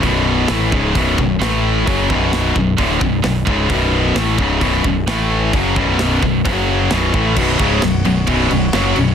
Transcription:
<<
  \new Staff \with { instrumentName = "Pipe organ" } { \time 4/4 \key a \mixolydian \tempo 4 = 131 r1 | r1 | r1 | r1 |
<b fis' cis''>1 | }
  \new Staff \with { instrumentName = "Distorted electric guitar" } { \clef bass \time 4/4 \key a \mixolydian <b,, fis, b,>4 <a, e a>8 <cis, gis, cis>8 <b,, fis, b,>8 <b,, fis,>8 <a, e a>4 | <fis, cis fis>8 <b,, fis, b,>4 <b,, fis,>8 <d, a, d>8 <b,, fis,>8 <b,, fis,>8 <cis, gis, cis>8 | <b,, fis, b,>4 <a, e a>8 <cis, gis, cis>8 <b,, fis, b,>8 <b,, fis,>8 <a, e a>4 | <fis, cis fis>8 <b,, fis, b,>4 <b,, fis,>8 <fis, cis fis>4 <b,, fis, b,>8 <a, e a>8 |
<b,, fis, b,>8 <cis, gis, cis>8 <b,, fis,>8 <b,, fis,>8 <b,, fis, b,>8 <b,, fis,>8 <fis, cis fis>8 <b,, fis,>8 | }
  \new Staff \with { instrumentName = "Distorted electric guitar" } { \clef bass \time 4/4 \key a \mixolydian <b,, fis, b,>4 <a, e a>8 <cis, gis, cis>8 <b,, fis, b,>8 <b,, fis,>8 <a, e a>4 | <fis, cis fis>8 <b,, fis, b,>4 <b,, fis,>8 <d, a, d>8 <b,, fis,>8 <b,, fis,>8 <cis, gis, cis>8 | <b,, fis, b,>4 <a, e a>8 <cis, gis, cis>8 <b,, fis, b,>8 <b,, fis,>8 <a, e a>4 | <fis, cis fis>8 <b,, fis, b,>4 <b,, fis,>8 <fis, cis fis>4 <b,, fis, b,>8 <a, e a>8 |
<b,, fis, b,>8 <cis, gis, cis>8 <b,, fis,>8 <b,, fis,>8 <b,, fis, b,>8 <b,, fis,>8 <fis, cis fis>8 <b,, fis,>8 | }
  \new Staff \with { instrumentName = "Distorted electric guitar" } { \clef bass \time 4/4 \key a \mixolydian r1 | r1 | r1 | r1 |
<b,, fis, b,>8 <cis, gis, cis>8 <b,, fis,>8 <b,, fis,>8 <b,, fis, b,>8 <b,, fis,>8 <fis, cis fis>8 <b,, fis,>8 | }
  \new Staff \with { instrumentName = "Picked electric bass" } { \clef bass \time 4/4 \key a \mixolydian b,,,4 a,,8 cis,,8 b,,,8 b,,,8 a,,4 | fis,,8 b,,,4 b,,,8 d,,8 b,,,8 b,,,8 cis,,8 | b,,,4 a,,8 cis,,8 b,,,8 b,,,8 a,,4 | fis,,8 b,,,4 b,,,8 fis,,4 b,,,8 a,,8 |
b,,,8 cis,,8 b,,,8 b,,,8 b,,,8 b,,,8 fis,,8 b,,,8 | }
  \new DrumStaff \with { instrumentName = "Drums" } \drummode { \time 4/4 <hho bd>4 <hho sn>8 bd8 <hho bd>8 bd8 <hho sn>4 | <hho bd>8 bd8 <hho sn>8 bd8 <hho bd>8 bd8 <hho sn>8 bd8 | <hho bd>4 <hho sn>8 bd8 <hho bd>8 bd8 <hho sn>4 | <hho bd>8 bd8 <hho sn>8 bd8 <hho bd>4 <hho sn>8 bd8 |
<cymc bd>8 <cymc bd>8 <cymc sn>8 cymc8 <cymc bd>8 cymc8 <cymc sn>8 cymc8 | }
>>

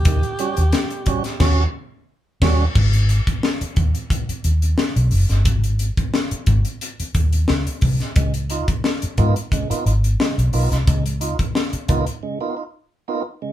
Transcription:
<<
  \new Staff \with { instrumentName = "Alto saxophone" } { \time 4/4 \key gis \dorian \tempo 4 = 89 g'2~ g'8 r4. | r1 | r1 | r1 |
r1 | }
  \new Staff \with { instrumentName = "Tonewheel organ" } { \time 4/4 \key gis \dorian dis16 r16 <g cis' fis'>16 <cis' fis'>16 r8 <g cis' fis'>16 r16 <cis' fis'>8 r4 <g cis' fis'>8 | r1 | r1 | <cis gis>16 r16 <dis' eis'>16 r8. <ais b dis' eis'>16 r16 <cis gis>16 <ais b dis' eis'>16 <dis' eis'>16 r16 <cis gis>16 r16 <ais b dis' eis'>16 <dis' eis'>16 |
<cis gis>16 r16 <dis' eis'>16 r8. <ais b dis' eis'>16 r16 <cis gis>16 <ais b dis' eis'>16 <dis' eis'>16 r8 <ais b dis' eis'>16 r16 <cis gis>16 | }
  \new Staff \with { instrumentName = "Fingered electric bass" } { \clef bass \time 4/4 \key gis \dorian dis,16 r8 dis,16 r4 dis,8 r4 dis,8 | gis,,8. r8. dis,16 r8. dis,8 r16 b,,16 fis,,16 g,,16 | gis,,8. r8. gis,,16 r8. dis,8 cis,16 r16 bis,,16 r16 | cis,8. r8. gis,16 r8. gis,,8 r16 b,,16 b,,16 bis,,16 |
cis,8. r8. cis,16 r2 r16 | }
  \new DrumStaff \with { instrumentName = "Drums" } \drummode { \time 4/4 <hh bd>16 hh16 hh16 hh16 <hh sn>16 hh16 <hh bd>16 <hh sn>16 <cymc bd sn>4 r8 <cymc bd sn>8 | <cymc bd>16 hh16 hh16 <hh bd>16 sn16 hh16 <hh bd>16 hh16 <hh bd>16 hh16 hh16 hh16 sn16 hh16 hho16 <hh sn>16 | <hh bd>16 hh16 hh16 <hh bd>16 sn16 hh16 <hh bd>16 hh16 hh16 hh16 <hh bd>16 hh16 sn16 hh16 <hho bd>16 <hh sn>16 | <hh bd>16 hh16 hh16 <hh bd>16 sn16 hh16 <hh bd>16 hh16 <hh bd>16 hh16 hh16 hh16 sn16 hh16 hho16 <hh sn>16 |
<hh bd>16 hh16 hh16 <hh bd>16 sn16 hh16 <hh bd>16 hh16 r4 r4 | }
>>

